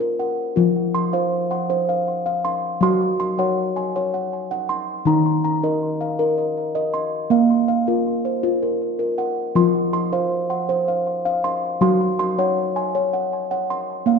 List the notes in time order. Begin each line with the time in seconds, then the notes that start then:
0.00 A#4
0.19 F#5
0.56 F3 F4
0.95 C6
1.13 C5 F5
1.51 F#5
1.70 C5
1.89 F5
2.26 F5
2.45 C6
2.81 F#3 F#4 C6
3.20 C6
3.39 C#5 F#5
3.76 G#5
3.96 C#5
4.14 F#5
4.51 F#5
4.69 C6
5.05 D#3 D#4 A#5
5.44 A#5
5.63 A#4 D#5
6.01 F5
6.19 A#4
6.38 D#5
6.75 D#5
6.94 C6
7.30 A#3 F5
7.68 F5
7.88 F4 A#4
8.25 C5
8.43 F4
8.63 A#4
8.99 A#4
9.18 F#5
9.55 F3 F4 C6
9.93 C6
10.13 C5 F5
10.50 F#5
10.69 C5
10.88 F5
11.25 F5
11.44 C6
11.81 F#3 F#4 C6
12.19 C6
12.39 C#5 F#5
12.76 G#5
12.95 C#5
13.13 F#5
13.51 F#5
13.70 C6
14.06 A#3 F5